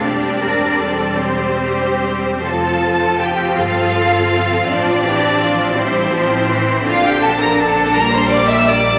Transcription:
<<
  \new Staff \with { instrumentName = "Violin section" } { \time 6/8 \key f \major \tempo 4. = 54 d''4. c''4. | a''4 g''8 f''4. | d''4. c''4. | f''16 g''16 a''16 bes''16 a''8 bes''16 c'''16 d'''16 e'''16 d'''8 | }
  \new Staff \with { instrumentName = "Violin section" } { \time 6/8 \key f \major d'4. c'4. | a'4 g'8 f'4. | d'4. c'4. | f'16 g'16 a'16 bes'16 a'8 bes'16 c''16 d''16 e''16 d''8 | }
  \new Staff \with { instrumentName = "Cello section" } { \time 6/8 \key f \major g'8 bes'8 a'8 g'4. | f'4. a'4. | f'8 g'8 f'8 e'4. | d'2. | }
  \new Staff \with { instrumentName = "Viola section" } { \clef bass \time 6/8 \key f \major << { c'2. | c'2.~ | c'2.~ | c'4. bes4. | } \\ { g2. | f2. | f8 e8 f8 g8 f8 e8 | d4. g4. | } >> }
  \new Staff \with { instrumentName = "Double bass section" } { \clef bass \time 6/8 \key f \major e,,2. | f,,4. g,,4. | a,,2. | bes,,2. | }
>>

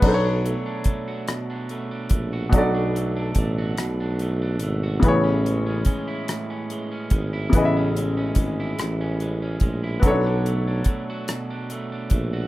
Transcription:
<<
  \new Staff \with { instrumentName = "Grand piano" } { \time 6/8 \key b \dorian \tempo 4. = 48 <fis b d' a' c'' cis''>2. | <b, fis d' a' d''>2. | <cis e b gis' cis''>2. | <cis e b gis' dis'' e''>2. |
<fis b cis' d' a' cis''>2. | }
  \new Staff \with { instrumentName = "Clean electric guitar" } { \time 6/8 \key b \dorian b,16 d'16 a16 d'16 a16 fis'16 b,16 d'16 a16 d'16 a16 fis'16 | b,16 d'16 a16 d'16 a16 fis'16 b,16 d'16 a16 d'16 a16 fis'16 | a,16 cis'16 gis16 cis'16 gis16 e'16 a,16 cis'16 gis16 cis'16 gis16 e'16 | a,16 cis'16 gis16 cis'16 gis16 e'16 a,16 cis'16 gis16 cis'16 gis16 e'16 |
b,16 d'16 a16 d'16 a16 fis'16 b,16 d'16 a16 d'16 a16 fis'16 | }
  \new Staff \with { instrumentName = "Tuba" } { \clef bass \time 6/8 \key b \dorian b,,8 r8 ais,,8 r4 ais,,8 | b,,4 a,,8 b,,4 gis,,8 | a,,4 gis,,8 r4 gis,,8 | a,,4 gis,,8 a,,4 ais,,8 |
b,,4 ais,,8 r4 ais,,8 | }
  \new DrumStaff \with { instrumentName = "Drums" } \drummode { \time 6/8 <cymc bd>8 hh8 <hh bd>8 <hh ss>8 hh8 <hh bd>8 | <hh bd>8 hh8 <hh bd>8 <hh ss>8 hh8 hh8 | <hh bd>8 hh8 <hh bd>8 <hh ss>8 hh8 <hh bd>8 | <hh bd>8 hh8 <hh bd>8 <hh ss>8 hh8 <hh bd>8 |
<hh bd>8 hh8 <hh bd>8 <hh ss>8 hh8 <hh bd>8 | }
>>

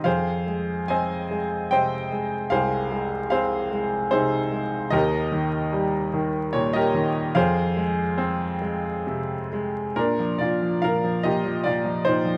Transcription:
<<
  \new Staff \with { instrumentName = "Grand piano" } { \time 3/4 \key f \minor \tempo 4 = 74 <aes' c'' f''>4 <c'' ees'' aes''>4 <c'' ees'' g''>4 | <aes' c'' f''>4 <aes' c'' f''>4 <ees' aes' c''>4 | <g' bes' ees''>2 des''16 <g' bes' ees''>8. | <aes' c'' f''>2~ <aes' c'' f''>8 r8 |
\key bes \mixolydian <d' bes'>8 <f' d''>8 <bes' f''>8 <g' ees''>8 <f' d''>8 <ees' c''>8 | }
  \new Staff \with { instrumentName = "Grand piano" } { \clef bass \time 3/4 \key f \minor f,8 aes8 c'8 aes8 c8 aes8 | c,8 aes8 c'8 aes8 c8 aes8 | ees,8 ees8 g8 ees8 bes,8 ees8 | f,8 aes8 c'8 aes8 c8 aes8 |
\key bes \mixolydian bes,16 f16 bes,16 f16 bes,16 f16 bes,16 f16 bes,16 f16 bes,16 f16 | }
>>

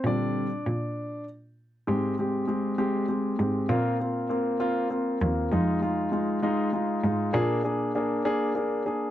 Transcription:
<<
  \new Staff \with { instrumentName = "Grand piano" } { \time 6/8 \key bes \mixolydian \tempo 4. = 66 <d' d''>2 r4 | <aes c' g'>8 <aes c' g'>8 <aes c' g'>8 <aes c' g'>8 <aes c' g'>8 <aes c' g'>8 | <bes c' f'>8 <bes c' f'>8 <bes c' f'>8 <bes c' f'>8 <bes c' f'>8 <bes c' f'>8 | <aes ees' f'>8 <aes ees' f'>8 <aes ees' f'>8 <aes ees' f'>8 <aes ees' f'>8 <aes ees' f'>8 |
<bes d' aes'>8 <bes d' aes'>8 <bes d' aes'>8 <bes d' aes'>8 <bes d' aes'>8 <bes d' aes'>8 | }
  \new Staff \with { instrumentName = "Grand piano" } { \clef bass \time 6/8 \key bes \mixolydian <d g c'>8 r2 r8 | r2. | r2. | r2. |
r2. | }
  \new Staff \with { instrumentName = "Cello" } { \clef bass \time 6/8 \key bes \mixolydian bes,4 bes,2 | aes,2~ aes,8 aes,8 | bes,2~ bes,8 ees,8 | f,2~ f,8 aes,8 |
bes,4. r4. | }
>>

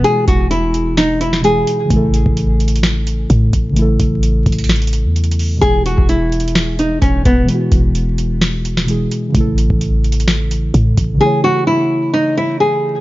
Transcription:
<<
  \new Staff \with { instrumentName = "Nylon-string guitar" } { \time 4/4 \key a \lydian \tempo 4 = 129 gis'8 fis'8 e'4 dis'8 e'8 gis'4 | r1 | r1 | gis'8 fis'8 e'4. dis'8 cis'8 b8 |
r1 | r1 | gis'8 fis'8 e'4 dis'8 e'8 gis'4 | }
  \new Staff \with { instrumentName = "Synth keys" } { \clef bass \time 4/4 \key a \lydian <b, e gis e' fis'>2. <b, e gis e' gis'>4 | <cis e a e' a'>1 | <cis e a e' a'>1 | <b, e gis e' gis'>1 |
<b, e gis e' fis'>2. <b, e gis e' gis'>4 | <cis e a e' a'>1 | <cis e a e' cis''>1 | }
  \new Staff \with { instrumentName = "808-style bass" } { \clef bass \time 4/4 \key a \lydian r8 e,,2. r8 | a,,8. a,,2~ a,,16 a,8 a,,8~ | a,,8 a,,4 a,,4~ a,,16 e,4~ e,16 | e,,8. e,,2~ e,,16 e,,8 e,,8 |
r8 e,,2. r8 | a,,8. a,,2~ a,,16 a,8 a,,8 | r1 | }
  \new DrumStaff \with { instrumentName = "Drums" } \drummode { \time 4/4 hh8 <hh bd>8 hh8 hh8 <hh sn>8 hh16 sn16 hh8 hh8 | <hh bd>8 hh16 bd16 \tuplet 3/2 { hh16 r16 r16 hh16 hh16 hh16 } <hh sn>8 hh8 <hh bd>8 <hh bd>8 | hh8 <hh bd>8 hh8 <hh hho bd>32 hh32 hh32 hh32 <hh sn>32 hh32 hh32 hh32 hh8 \tuplet 3/2 { hh16 hh16 hh16 hho16 r16 r16 } | <hh bd>8 hh16 bd16 \tuplet 3/2 { hh16 r16 r16 hh16 hh16 hh16 } <hh sn>8 hh8 <hh bd>8 <hh bd>8 |
hh8 <hh bd>8 hh8 hh8 <hh sn>8 hh16 sn16 hh8 hh8 | <hh bd>8 hh16 bd16 \tuplet 3/2 { hh16 r16 r16 hh16 hh16 hh16 } <hh sn>8 hh8 <hh bd>8 <hh bd>8 | r4 r4 r4 r4 | }
>>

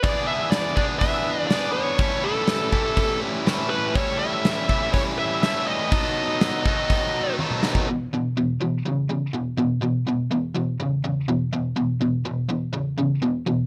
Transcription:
<<
  \new Staff \with { instrumentName = "Lead electric guitar" } { \time 4/4 \key a \major \tempo 4 = 123 d''8 e''8 d''8 d''8 e''4 d''8 cis''8~ | cis''8 a'2 r4 b'8 | cis''8 e''4. cis''8 e''8 e''8 dis''8~ | dis''2. r4 |
r1 | r1 | r1 | }
  \new Staff \with { instrumentName = "Overdriven electric guitar" } { \clef bass \time 4/4 \key a \major <e b d' gis'>4. <e b d' gis'>4. <e b d' gis'>4 | <a, e g cis' e' a'>4. <a, e g cis' e' a'>4. <a, e g cis' e' a'>4 | <a, e g cis' e' a'>4. <a, e g cis' e' a'>4. <a, e g cis' e' a'>4 | <b, dis fis b dis' a'>4. <b, dis fis b dis' a'>4. <b, dis fis b dis' a'>4 |
<e, b,>8 <e, b,>8 <e, b,>8 <e, b,>8 <e, cis>8 <e, cis>8 <e, b,>8 <e, b,>8 | <e, b,>8 <e, b,>8 <e, b,>8 <e, b,>8 <e, cis>8 <e, cis>8 <e, b,>8 <e, b,>8 | <e, b,>8 <e, b,>8 <e, b,>8 <e, b,>8 <e, cis>8 <e, cis>8 <e, b,>8 <e, b,>8 | }
  \new DrumStaff \with { instrumentName = "Drums" } \drummode { \time 4/4 <hho bd>4 <hho sn>8 bd8 <hho bd>4 <hho sn>4 | <hho bd>4 <hho sn>8 bd8 <hho bd>4 <hho sn>4 | <hho bd>4 <hho sn>8 bd8 <hho bd>4 <hho sn>4 | <hho bd>4 <hho sn>8 bd8 <hho bd>4 tommh16 toml16 sn16 bd16 |
r4 r4 r4 r4 | r4 r4 r4 r4 | r4 r4 r4 r4 | }
>>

